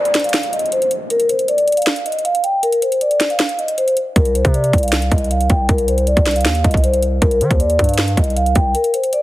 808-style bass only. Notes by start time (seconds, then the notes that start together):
4.16 C2
4.45 C3
4.73 C2
5.12 C2
5.50 C2
5.69 C2
6.17 C2
6.45 D#2
6.64 C2
7.22 C2
7.41 D#3
7.51 D#2
7.79 G2
8.17 C2
8.56 C2